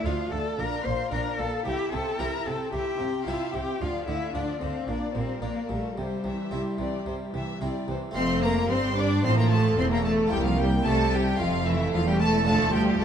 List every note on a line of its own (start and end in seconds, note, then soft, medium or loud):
0.04 0.12 D2 medium
0.04 0.13 D2 soft
0.04 0.30 D2 soft
0.04 0.32 F3 soft
0.04 0.44 A3 soft
0.04 0.44 D4 soft
0.04 0.33 F4 medium
0.04 0.32 F5 medium
0.04 0.32 F5 soft
0.31 0.40 D2 soft
0.31 0.40 D2 medium
0.31 0.56 D2 soft
0.31 0.58 A3 soft
0.31 0.61 A4 medium
0.31 0.58 D5 soft
0.31 0.58 A5 medium
0.58 0.67 A#1 medium
0.58 0.67 A#2 medium
0.58 0.83 A#2 soft
0.58 0.84 D4 soft
0.58 0.86 A#4 medium
0.58 0.84 D5 soft
0.58 0.86 A#5 medium
0.85 0.93 A#1 medium
0.85 1.10 A#2 soft
0.85 0.93 A#2 medium
0.85 1.12 A#3 soft
0.85 1.11 C5 medium
0.85 1.12 F5 soft
0.85 1.13 C6 medium
1.12 1.20 A#1 medium
1.12 1.20 A#2 medium
1.12 1.36 A#2 soft
1.12 1.39 D4 soft
1.12 1.51 D4 soft
1.12 1.42 A#4 medium
1.12 1.39 D5 soft
1.12 1.20 A#5 medium
1.38 1.47 A#1 soft
1.38 1.47 A#2 soft
1.38 1.63 A#2 soft
1.38 1.66 A#3 soft
1.38 1.66 A4 medium
1.38 1.66 F5 soft
1.38 1.65 A5 medium
1.65 1.74 C2 medium
1.65 1.90 C3 soft
1.65 1.74 C3 medium
1.65 1.90 E4 medium
1.65 1.92 G4 medium
1.65 1.91 E5 soft
1.65 1.74 G5 medium
1.92 2.01 C2 soft
1.92 2.17 C3 soft
1.92 2.02 C3 soft
1.92 2.19 C4 soft
1.92 2.21 A4 medium
1.92 2.20 G5 soft
1.92 2.19 A5 medium
2.18 2.28 C2 medium
2.18 2.44 C3 soft
2.18 2.28 C3 medium
2.18 2.58 C4 soft
2.18 2.46 E4 soft
2.18 2.58 E4 soft
2.18 2.59 G4 soft
2.18 2.48 A#4 medium
2.18 2.46 E5 soft
2.18 2.46 A#5 medium
2.45 2.54 C2 soft
2.45 2.70 C3 soft
2.45 2.55 C3 soft
2.45 2.72 C4 soft
2.45 2.73 A4 medium
2.45 2.73 G5 soft
2.45 2.73 A5 medium
2.72 2.81 C2 medium
2.72 2.97 C3 soft
2.72 2.81 C3 medium
2.72 2.98 E4 soft
2.72 3.26 G4 medium
2.72 2.98 E5 soft
2.72 3.26 G5 medium
2.99 3.08 C2 soft
2.99 3.08 C3 soft
2.99 3.24 C3 soft
2.99 3.26 C4 soft
2.99 3.27 G5 soft
3.26 3.35 C2 medium
3.26 3.52 C3 soft
3.26 3.35 C3 medium
3.26 3.66 C4 soft
3.26 3.54 E4 soft
3.26 3.67 E4 soft
3.26 3.53 F4 medium
3.26 3.67 G4 soft
3.26 3.54 E5 soft
3.26 3.54 F5 medium
3.53 3.62 C2 soft
3.53 3.62 C3 soft
3.53 3.78 C3 soft
3.53 3.81 C4 soft
3.53 3.83 G4 medium
3.53 3.81 G5 medium
3.53 3.82 G5 soft
3.80 3.89 D2 medium
3.80 3.89 D3 medium
3.80 4.06 D3 soft
3.80 4.06 F3 soft
3.80 4.08 F4 medium
3.80 4.06 D5 soft
3.80 4.07 F5 medium
4.08 4.16 D2 soft
4.08 4.32 D3 soft
4.08 4.16 D3 soft
4.08 4.35 A3 soft
4.08 4.34 E4 medium
4.08 4.34 E5 medium
4.08 4.35 F5 soft
4.34 4.43 D2 soft
4.34 4.59 D3 soft
4.34 4.43 D3 soft
4.34 4.61 F3 soft
4.34 4.61 D4 medium
4.34 4.73 D4 soft
4.34 4.61 D5 medium
4.34 4.62 D5 soft
4.61 4.70 D2 soft
4.61 4.86 D3 soft
4.61 4.70 D3 soft
4.61 4.88 A3 soft
4.61 4.90 C4 medium
4.61 4.88 C5 soft
4.61 4.89 F5 soft
4.88 4.96 A#1 medium
4.88 5.12 A#2 soft
4.88 4.97 A#2 soft
4.88 5.13 A#3 soft
4.88 5.15 D4 medium
4.88 5.14 D5 soft
4.88 5.15 D5 medium
5.15 5.24 A#1 soft
5.15 5.40 A#2 soft
5.15 5.25 A#2 soft
5.15 5.42 G3 soft
5.15 5.42 C4 medium
5.15 5.43 A#4 soft
5.15 5.43 C5 soft
5.42 5.50 A#1 soft
5.42 5.67 A#2 soft
5.42 5.52 A#2 soft
5.42 5.69 A#3 soft
5.42 5.69 A#3 medium
5.42 5.82 D4 soft
5.42 5.70 A#4 soft
5.42 5.69 D5 soft
5.69 5.78 A#1 soft
5.69 5.94 A#2 soft
5.69 5.78 A#2 soft
5.69 5.96 G3 soft
5.69 5.97 A3 medium
5.69 5.97 A4 soft
5.69 5.97 A#4 soft
5.95 6.05 C2 soft
5.95 6.22 C3 soft
5.95 6.06 C3 soft
5.95 6.23 G3 soft
5.95 7.85 G3 medium
5.95 7.88 G4 soft
5.95 6.22 C5 soft
6.24 6.33 C2 soft
6.24 6.49 C3 soft
6.24 6.33 C3 soft
6.24 6.52 E3 soft
6.24 6.51 E5 soft
6.51 6.59 C2 soft
6.51 6.76 C3 soft
6.51 6.60 C3 soft
6.51 6.79 G3 soft
6.51 6.91 C4 soft
6.51 6.91 E4 soft
6.51 6.60 E5 soft
6.79 6.87 C2 soft
6.79 7.03 C3 soft
6.79 6.87 C3 soft
6.79 7.06 E3 soft
6.79 7.06 D5 soft
7.06 7.14 C2 soft
7.06 7.31 C3 soft
7.06 7.15 C3 soft
7.06 7.32 G3 soft
7.06 7.15 C5 soft
7.33 7.41 C2 soft
7.33 7.59 C3 soft
7.33 7.42 C3 soft
7.33 7.61 E3 soft
7.33 7.61 E5 soft
7.60 7.69 C2 soft
7.60 7.69 C3 soft
7.60 7.86 C3 soft
7.60 7.88 G3 soft
7.60 8.01 C4 soft
7.60 8.01 E4 soft
7.60 7.89 D5 soft
7.88 7.97 C2 soft
7.88 8.13 C3 soft
7.88 7.97 C3 soft
7.88 8.16 E3 soft
7.88 7.98 C5 soft
8.11 8.66 A3 medium
8.11 8.67 C4 medium
8.11 8.44 C4 medium
8.11 10.27 F4 medium
8.15 8.66 F1 medium
8.15 8.66 F2 medium
8.15 8.66 A3 medium
8.15 8.42 C5 medium
8.15 8.41 C6 loud
8.42 8.71 A#3 medium
8.42 8.71 A#4 medium
8.42 8.69 A#5 loud
8.69 9.24 G1 medium
8.69 9.24 G2 medium
8.69 9.20 G2 medium
8.69 9.24 G3 medium
8.69 8.96 C4 medium
8.69 8.98 C5 medium
8.69 8.97 C6 medium
8.97 9.26 D4 medium
8.97 9.25 D5 medium
8.97 9.24 D6 medium
9.23 9.77 A1 medium
9.23 9.77 A2 medium
9.23 9.74 A2 medium
9.23 9.77 F3 medium
9.23 9.37 C4 medium
9.23 9.38 C5 medium
9.23 9.37 C6 loud
9.38 9.53 A#3 medium
9.38 9.52 A#4 medium
9.38 9.51 A#5 loud
9.50 9.78 A3 medium
9.50 9.79 A4 medium
9.50 9.77 A5 loud
9.78 10.31 E1 medium
9.78 10.31 E2 medium
9.78 10.29 E2 medium
9.78 10.32 A3 medium
9.78 9.91 C4 medium
9.78 9.92 C5 medium
9.78 9.83 C6 loud
9.92 10.05 A#3 medium
9.92 10.06 A#4 medium
9.92 10.05 A#5 medium
10.05 10.32 A3 medium
10.05 10.32 A4 medium
10.05 10.13 A5 loud
10.27 11.34 A#3 medium
10.27 11.35 C4 medium
10.27 11.36 E4 medium
10.31 10.82 C2 medium
10.31 10.85 C2 medium
10.31 10.38 G3 medium
10.31 10.86 A#3 medium
10.31 10.46 G4 medium
10.31 10.45 G5 loud
10.45 10.59 F3 medium
10.45 10.59 F4 medium
10.45 10.59 F5 medium
10.59 10.85 G3 medium
10.59 10.68 G4 medium
10.59 10.86 G5 loud
10.85 11.39 C2 medium
10.85 11.39 C3 medium
10.85 11.36 C3 medium
10.85 11.40 G3 medium
10.85 11.11 A3 medium
10.85 11.13 A4 medium
10.85 11.13 A5 loud
11.12 11.40 G3 medium
11.12 11.40 G4 medium
11.12 11.40 G5 medium
11.36 11.68 F3 medium
11.36 11.90 A3 medium
11.36 12.48 A3 medium
11.36 11.91 C4 medium
11.36 12.44 F4 medium
11.36 11.67 F5 loud
11.40 11.93 F1 medium
11.40 11.93 F2 medium
11.40 11.90 F2 medium
11.40 11.67 F4 medium
11.66 11.92 E3 medium
11.66 11.94 E4 medium
11.66 11.94 E5 medium
11.92 12.46 E1 medium
11.92 12.44 E2 medium
11.92 12.47 E2 medium
11.92 11.98 F3 medium
11.92 12.07 F4 medium
11.92 12.06 F5 medium
12.07 12.22 G3 medium
12.07 12.21 G4 medium
12.07 12.21 G5 medium
12.20 12.47 A3 medium
12.20 12.48 A4 medium
12.20 12.46 A5 loud
12.43 12.99 F3 medium
12.43 13.05 A3 medium
12.43 12.73 A3 medium
12.43 13.05 D4 medium
12.43 13.05 F4 medium
12.43 12.74 A5 loud
12.48 13.01 D2 medium
12.48 12.97 D2 medium
12.48 13.02 D2 medium
12.48 12.75 A4 medium
12.74 13.03 G3 medium
12.74 13.01 G4 medium
12.74 12.82 G5 loud
13.00 13.05 F1 medium
13.00 13.05 F3 medium
13.00 13.05 A3 medium
13.00 13.05 A4 medium
13.00 13.05 A5 loud